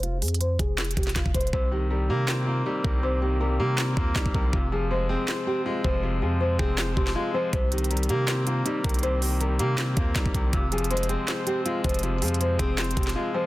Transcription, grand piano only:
\new Staff \with { instrumentName = "Grand piano" } { \clef bass \time 4/4 \key f \dorian \tempo 4 = 160 r1 | c8 ees8 g8 bes8 c'8 bes8 g8 ees8 | c8 ees8 g8 bes8 c'8 bes8 g8 ees8 | c8 f8 aes8 c'8 c''8 c'8 aes8 f8 |
c8 f8 aes8 c'8 c''8 c'8 aes8 f8 | c8 ees8 g8 bes8 c'8 bes8 g8 ees8 | c8 ees8 g8 bes8 c'8 bes8 g8 ees8 | c8 f8 aes8 c'8 c''8 c'8 aes8 f8 |
c8 f8 aes8 c'8 c''8 c'8 aes8 f8 | }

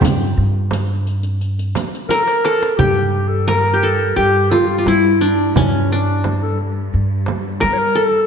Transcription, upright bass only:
\new Staff \with { instrumentName = "Upright bass" } { \clef bass \time 4/4 \tempo 4 = 87 g,8 g,2 r4. | g,2 g,8 r8 g4 | g,2 g,8 r8 g4 | }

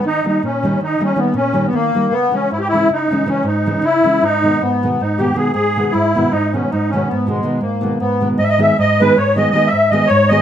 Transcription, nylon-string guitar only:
\new Staff \with { instrumentName = "Nylon-string guitar" } { \clef bass \time 11/8 \key gis \minor \tempo 4 = 158 << { r8 <dis g ais dis'>8 r8 <dis g ais dis'>8 r8 <dis g ais dis'>8 <dis g ais dis'>8 r8 <dis g ais dis'>8 r8 <dis g ais dis'>8 | r8 <cis e gis cis'>8 r8 <cis e gis cis'>8 r8 <cis e gis cis'>8 <cis e gis cis'>8 r8 <cis e gis cis'>8 r8 <cis e gis cis'>8 | r8 <b, dis gis b>8 r8 <b, dis gis b>8 r8 <b, dis gis b>8 <b, dis gis b>8 r8 <b, dis gis b>8 r8 <b, dis gis b>8 | r8 <b, dis gis b>8 r8 <b, dis gis b>8 r8 <b, dis gis b>8 <b, dis gis b>8 r8 <b, dis gis b>8 r8 <b, dis gis b>8 |
r8 <dis gis b dis' gis'>8 r8 <dis gis b dis' gis'>8 r8 <dis gis b dis' gis'>8 <dis gis b dis' gis'>8 r8 <dis gis b dis' gis'>8 r8 <dis gis b dis' gis'>8 | } \\ { r4 ais,4 dis4 r8 ais,4 dis4 | cis4 gis,4 cis4 r8 gis,4 cis4 | gis,4 gis,4 gis,4 r8 gis,4 gis,4 | gis,4 gis,4 gis,4 r8 gis,4 gis,4 |
gis,4 gis,4 gis,4 r8 gis,4 gis,4 | } >> }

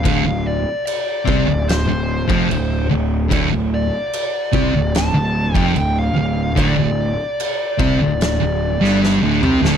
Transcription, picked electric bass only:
\new Staff \with { instrumentName = "Picked electric bass" } { \clef bass \time 4/4 \key d \minor \tempo 4 = 74 d,,16 d,,8 r8. c,16 d,,8 d,,8 f,,16 d,,8 d,,8 | d,,16 d,,8 r8. c,16 d,,8 d,,8 f,,16 d,,8 d,,8 | d,,16 d,,8 r8. c,16 d,,8 d,,8 g,,8 d,,16 c,16 d,,16 | }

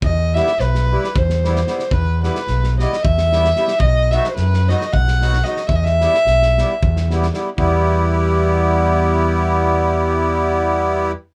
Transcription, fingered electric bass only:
\new Staff \with { instrumentName = "Fingered electric bass" } { \clef bass \time 7/8 \key e \minor \tempo 4 = 111 e,4 b,,4 e,4. | e,4 b,,4 e,4. | b,,4 fis,4 b,,4. | e,4 b,,4 e,4. |
e,2.~ e,8~ | e,2.~ e,8 | }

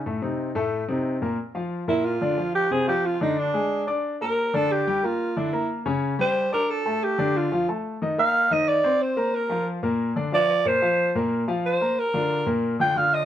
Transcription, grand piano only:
\new Staff \with { instrumentName = "Grand piano" } { \time 4/4 \key bes \major \tempo 4 = 181 <a, a a'>8 <c c' ees'>4 <a, a a'>4 <c c' ees'>4 <bes, bes bes'>8 | r8 <f f' f''>4 <bes, bes bes'>4 <d d' d''>8 <f f' f''>4 | <c c' c''>8 <f f' f''>4 <d d' d''>4 <aes aes' aes''>4 <d' d'' d'''>8~ | <d' d'' d'''>8 <bes bes' bes''>4 <d d' d''>4 <g g' g''>8 <bes bes' bes''>4 |
<d d' d''>8 <bes bes' bes''>4 <des des' des''>4 <g g' g''>4 <d' d'' d'''>8~ | <d' d'' d'''>8 <a a' a''>4 <d d' d''>4 <f f' f''>8 <a a' a''>4 | <ees ees' ees''>8 <bes bes' bes''>4 <ees ees' ees''>4 <c' c'' c'''>4 <bes bes' bes''>8~ | <bes bes' bes''>8 <f f' f''>4 <bes, bes bes'>4 <d d' d''>8 <f f' f''>4 |
<bes, bes bes'>8 <f f' f''>4 <bes, bes bes'>4 <f f' f''>4 <bes bes' bes''>8 | r8 <d d' f'>4 <bes, bes bes'>4 <d d' f'>8 <d d' f'>4 | }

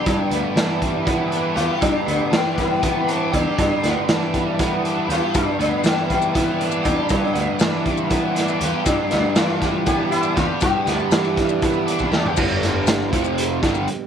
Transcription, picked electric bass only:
\new Staff \with { instrumentName = "Picked electric bass" } { \clef bass \time 7/8 \key g \mixolydian \tempo 4 = 119 g,16 r16 d,16 r16 e2 e,16 r16 | g,16 r16 d,16 r16 e2 e,16 r16 | g,16 r16 d,16 r16 e2 e,16 r16 | g,16 r16 d,16 r16 e2 e,16 r16 |
g,16 r16 d,16 r16 e2 e,16 r16 | g,16 r16 d,16 r16 e2 e,16 r16 | g,16 r16 d,16 r16 e2 e,16 r16 | g,,4. f,,4 g,,8 r8 | }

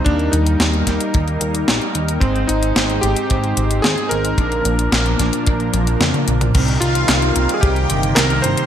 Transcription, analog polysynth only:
\new Staff \with { instrumentName = "Analog polysynth" } { \time 4/4 \key c \minor \tempo 4 = 111 <g bes ees' bes'>4. <g bes ees' bes'>2~ <g bes ees' bes'>8 | <aes, aes c' ees' c''>4. <aes, aes c' ees' c''>2~ <aes, aes c' ees' c''>8 | <bes, f bes d' bes'>4. <bes, f bes d' bes'>2~ <bes, f bes d' bes'>8 | <c g c' ees' bes'>4. <c g c' ees' bes'>2~ <c g c' ees' bes'>8 | }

